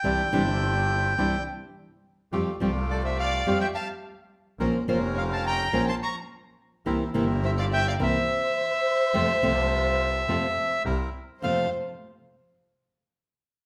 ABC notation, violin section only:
X:1
M:4/4
L:1/16
Q:1/4=105
K:F
V:1 name="Violin section"
z16 | z4 A c d3 e f2 z4 | z4 _d f g3 a b2 z4 | z4 c d e d c8- |
c12 z4 | c2 z12 z2 |]